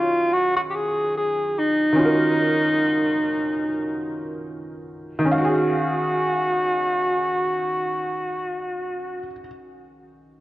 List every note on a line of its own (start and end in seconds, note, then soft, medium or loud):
0.00 1.91 D#3 medium
0.00 1.96 F#3 medium
0.00 1.93 C#4 medium
0.00 0.35 F4 medium
0.00 1.95 F4 medium
0.00 1.98 G#4 medium
0.33 0.56 F#4 loud
0.56 0.61 F#4 medium
0.70 0.77 G4 medium
0.75 1.16 G#4 loud
1.17 1.60 G#4 medium
1.59 4.49 D#4 loud
1.93 5.18 D#3 medium
1.93 5.24 C#4 medium
1.99 5.28 F4 medium
1.99 5.29 F#4 medium
2.05 5.31 A#4 medium
5.19 9.19 D#3 medium
5.25 9.25 C#4 medium
5.32 9.33 F#4 medium
5.32 9.31 F5 medium
5.38 9.38 F#4 medium
5.45 9.44 G#4 medium